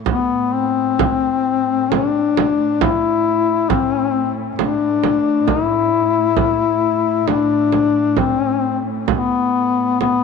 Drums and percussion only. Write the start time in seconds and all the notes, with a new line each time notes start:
0.06 frame drum
0.99 frame drum
1.92 frame drum
2.37 frame drum
2.81 frame drum
3.70 frame drum
4.59 frame drum
5.04 frame drum
5.48 frame drum
6.37 frame drum
7.28 frame drum
7.72 frame drum
8.17 frame drum
9.08 frame drum
10.01 frame drum